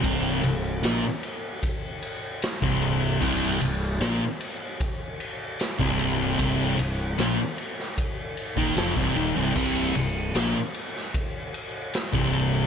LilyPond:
<<
  \new Staff \with { instrumentName = "Distorted electric guitar" } { \clef bass \time 4/4 \key c \minor \tempo 4 = 76 <c, c>8 c,8 <bes, bes>16 r2 <c, c>8. | <c, c>8 c,8 <bes, bes>16 r2 <c, c>8. | <c, c>8 c,8 <bes, bes>16 r4. <ees, ees>16 <f, f>16 <c, c>16 <ees, ees>16 <c, c>16 | <c, c>8 c,8 <bes, bes>16 r2 <c, c>8. | }
  \new Staff \with { instrumentName = "Distorted electric guitar" } { \clef bass \time 4/4 \key c \minor <c, c>8 c,8 <bes, bes>16 r2 <c, c>8. | <c, c>8 c,8 <bes, bes>16 r2 <c, c>8. | <c, c>8 c,8 <bes, bes>16 r4. <ees, ees>16 <f, f>16 <c, c>16 <ees, ees>16 <c, c>16 | <c, c>8 c,8 <bes, bes>16 r2 <c, c>8. | }
  \new Staff \with { instrumentName = "Fingered electric bass" } { \clef bass \time 4/4 \key c \minor c,,8 c,,8 bes,,16 r2 c,,8. | c,,8 c,,8 bes,,16 r2 c,,8. | c,,8 c,,8 bes,,16 r4. ees,,16 f,,16 c,,16 ees,,16 c,,16 | c,,8 c,,8 bes,,16 r2 c,,8. | }
  \new DrumStaff \with { instrumentName = "Drums" } \drummode { \time 4/4 <bd cymr>8 cymr8 <cymr sn>8 cymr8 <bd cymr>8 cymr8 <cymr sn>16 <bd sn>16 cymr8 | <cymc bd>8 cymr8 <cymr sn>8 cymr8 <bd cymr>8 cymr8 <cymr sn>16 bd16 cymr8 | <bd cymr>8 cymr8 <cymr sn>8 cymr16 sn16 <bd cymr>8 cymr16 bd16 <cymr sn>16 <bd sn>16 cymr8 | <cymc bd>8 cymr8 <cymr sn>8 cymr16 sn16 <bd cymr>8 cymr8 <cymr sn>16 bd16 cymr8 | }
>>